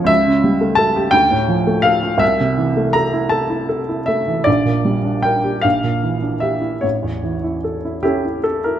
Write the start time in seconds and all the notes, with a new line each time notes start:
Already playing: F2 C#3 F3 C#4 F4 G#4 C#5 D#5 F5
0.04 C#2 E5
0.27 C#3
0.44 G3
0.61 A3
0.75 A4 A5
0.96 G4
1.11 D2 G5
1.31 A2
1.48 F3
1.67 A3
1.82 A4 F5
2.03 F4
2.18 C2 E5
2.40 C3
2.58 E3
2.77 A3
2.93 A4 A#5
3.13 E4
3.29 A4 A5
3.50 E4
3.69 A4
3.89 E4
4.06 A3 E5
4.28 E3
4.44 A#1 D5
4.65 A#2
4.85 G3
5.05 D4
5.22 A#4 G5
5.44 G4
5.61 A#1 F5
5.84 A#2
6.03 E3
6.22 D4
6.40 G4 E5
6.61 E4
6.81 A1 C#5
7.03 E2
7.23 E3
7.44 E4
7.64 A4
7.85 E4
8.03 C#4 E4 G4 A4
8.25 E4
8.44 A4
8.64 E4 A#4